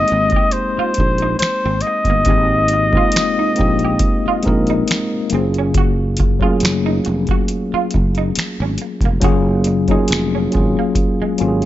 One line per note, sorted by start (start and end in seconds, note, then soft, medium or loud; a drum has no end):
0.00 2.25 G#3 loud
0.00 2.26 A#3 loud
0.00 2.27 C4 loud
0.00 2.28 D#4 loud
0.00 2.29 G4 loud
0.00 0.54 D#5 loud
0.08 closed hi-hat soft
0.12 0.30 G#1 medium
0.12 muted clean electric guitar stroke soft
0.30 kick loud
0.30 closed hi-hat soft
0.36 0.48 G4 medium
0.51 1.38 C5 loud
0.51 closed hi-hat medium
0.78 0.91 F4 medium
0.78 muted fretless electric bass stroke soft
0.94 kick medium
0.94 closed hi-hat medium
1.00 1.35 A#1 medium
1.00 muted clean electric guitar stroke soft
1.18 closed hi-hat soft
1.22 1.34 D#4 medium
1.39 1.83 C5 loud
1.39 muted fretless electric bass stroke soft
1.39 snare medium
1.39 closed hi-hat medium
1.43 finger snap medium
1.65 1.81 G#1 loud
1.65 1.78 C4 medium
1.81 5.30 D#5 loud
1.81 closed hi-hat medium
1.87 muted clean electric guitar stroke soft
2.05 2.23 G1 medium
2.05 kick medium
2.05 closed hi-hat soft
2.10 2.22 A#3 medium
2.25 3.00 G#1 loud
2.25 2.84 G#3 medium
2.25 2.85 A#3 medium
2.25 2.85 C4 medium
2.25 2.86 D#4 medium
2.25 2.86 G4 loud
2.25 kick loud
2.25 closed hi-hat medium
2.30 2.44 G#3 medium
2.68 closed hi-hat medium
2.73 muted clean electric guitar stroke soft
2.91 3.49 G#3 medium
2.91 3.50 A#3 medium
2.91 3.50 C4 medium
2.91 3.50 D#4 medium
2.91 kick medium
2.96 3.51 F4 medium
2.96 3.09 F4 medium
3.12 closed hi-hat medium
3.16 finger snap loud
3.16 snare loud
3.39 3.51 D#4 medium
3.55 4.33 G#3 medium
3.55 4.34 A#3 medium
3.55 4.34 C4 medium
3.55 4.35 D#4 medium
3.55 4.35 G4 medium
3.55 closed hi-hat medium
3.59 3.95 A#1 loud
3.59 muted clean electric guitar stroke soft
3.59 kick medium
3.79 closed hi-hat soft
3.85 3.96 G4 medium
3.99 kick loud
3.99 closed hi-hat medium
4.26 4.40 F4 medium
4.26 muted fretless electric bass stroke soft
4.43 5.21 G#3 medium
4.43 5.21 A#3 medium
4.43 5.22 C4 medium
4.43 5.22 D#4 medium
4.43 5.22 A#4 loud
4.43 kick medium
4.43 closed hi-hat medium
4.47 4.82 A#1 loud
4.47 muted clean electric guitar stroke soft
4.67 4.82 D#4 medium
4.67 closed hi-hat soft
4.88 finger snap medium
4.88 muted clean electric guitar stroke soft
4.88 snare loud
4.88 closed hi-hat medium
5.30 6.41 F#1 medium
5.30 6.27 F#3 medium
5.30 6.27 A#3 medium
5.30 6.28 C#4 medium
5.30 6.28 F4 medium
5.30 closed hi-hat medium
5.34 5.49 C4 medium
5.34 6.29 G#4 loud
5.54 closed hi-hat soft
5.58 5.70 C#4 medium
5.74 5.92 F#4 medium
5.74 kick loud
5.74 closed hi-hat medium
6.17 muted clean electric guitar stroke soft
6.17 kick loud
6.17 closed hi-hat medium
6.39 7.92 F#3 medium
6.39 6.47 A3 medium
6.39 7.93 C#4 medium
6.39 6.55 F4 medium
6.39 7.93 F4 medium
6.39 kick medium
6.44 7.95 A#3 medium
6.44 7.94 G#4 loud
6.60 6.99 F#1 medium
6.60 closed hi-hat medium
6.65 finger snap medium
6.65 snare loud
6.86 6.99 D#4 medium
7.05 7.26 F1 medium
7.05 muted clean electric guitar stroke soft
7.05 closed hi-hat medium
7.27 kick medium
7.27 closed hi-hat soft
7.31 7.43 F#4 medium
7.48 closed hi-hat medium
7.74 7.86 F4 medium
7.74 muted fretless electric bass stroke soft
7.91 muted clean electric guitar stroke soft
7.91 kick medium
7.91 closed hi-hat medium
7.96 8.30 F#1 medium
8.15 8.30 D#4 medium
8.15 closed hi-hat soft
8.36 finger snap medium
8.36 muted fretless electric bass stroke soft
8.36 snare loud
8.36 closed hi-hat medium
8.60 8.76 G#1 loud
8.60 8.74 C#4 medium
8.78 muted clean electric guitar stroke soft
8.78 closed hi-hat medium
9.01 9.19 F1 medium
9.01 kick medium
9.01 closed hi-hat soft
9.05 9.17 A#3 medium
9.20 9.95 F#1 medium
9.20 9.80 F#3 loud
9.20 9.80 A#3 loud
9.20 9.81 C#4 loud
9.20 9.81 F4 loud
9.20 kick loud
9.20 closed hi-hat medium
9.24 9.39 F#4 medium
9.24 9.82 G#4 loud
9.64 muted clean electric guitar stroke soft
9.64 closed hi-hat medium
9.88 10.45 F#3 medium
9.88 10.45 A#3 medium
9.88 10.46 C#4 medium
9.88 10.04 D#4 medium
9.88 10.46 F4 medium
9.88 kick medium
9.88 closed hi-hat soft
9.92 10.47 G#4 loud
10.08 10.46 F1 loud
10.08 closed hi-hat medium
10.12 finger snap loud
10.12 snare loud
10.35 10.47 C#4 medium
10.51 11.29 F#3 medium
10.51 11.29 A#3 medium
10.51 11.30 C#4 medium
10.51 11.31 F4 medium
10.51 muted clean electric guitar stroke soft
10.51 closed hi-hat medium
10.55 10.74 G#1 medium
10.55 11.31 G#4 medium
10.55 kick medium
10.79 10.91 A#3 medium
10.95 kick loud
10.95 closed hi-hat medium
11.22 11.34 G#3 medium
11.22 muted fretless electric bass stroke soft
11.38 11.65 G#1 medium
11.38 11.65 F#3 medium
11.38 11.65 A#3 medium
11.38 11.65 C#4 medium
11.38 11.65 F4 medium
11.38 11.48 G4 medium
11.38 muted clean electric guitar stroke soft
11.38 closed hi-hat medium
11.48 11.65 G#4 medium
11.62 closed hi-hat soft